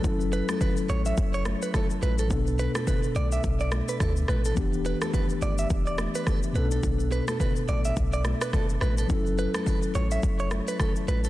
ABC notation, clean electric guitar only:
X:1
M:4/4
L:1/16
Q:"Swing 16ths" 1/4=106
K:Bm
V:1 name="Clean electric guitar"
z2 B A B z c e z c z B A z B A | z2 B A B z d e z d z B A z B A | z2 B A B z d e z d z B A z B A | z2 B A B z d e z d z B A z B A |
z2 B A B z c e z c z B A z B A |]